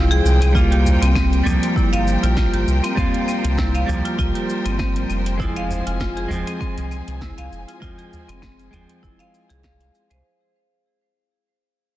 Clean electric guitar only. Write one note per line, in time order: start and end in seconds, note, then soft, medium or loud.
0.00 0.52 F3 loud
0.00 0.50 G#3 loud
0.00 0.51 C4 medium
0.53 1.41 G3 medium
0.53 1.42 A#3 medium
0.53 1.43 F4 medium
1.43 2.93 G3 medium
1.43 2.94 A#3 medium
1.47 2.95 F3 loud
2.95 3.84 G3 medium
2.95 3.85 A#3 medium
2.95 3.86 F4 medium
3.86 5.37 F3 medium
3.86 5.35 G3 medium
3.86 5.36 A#3 medium
5.38 6.26 G#3 medium
5.38 6.27 C4 medium
5.42 6.28 F3 loud
6.28 7.78 G#3 medium
6.28 7.79 C4 medium
6.32 7.80 F3 loud
7.80 8.71 F3 medium
7.80 8.69 G#3 medium
7.80 8.70 C4 medium
8.71 10.22 F3 loud
8.71 10.20 G#3 medium
8.71 10.21 C4 medium